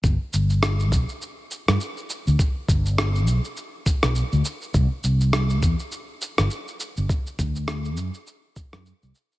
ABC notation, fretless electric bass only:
X:1
M:4/4
L:1/16
Q:"Swing 16ths" 1/4=102
K:Dmix
V:1 name="Fretless electric bass" clef=bass
G,,, z G,,,4 B,,, z4 G,, z3 D,, | z2 G,,,4 B,,, z4 B,,, z D,, z2 | C,, z C,,4 E,, z4 G,,, z3 G,,, | z2 D,,4 F,, z4 F,, z C,, z2 |]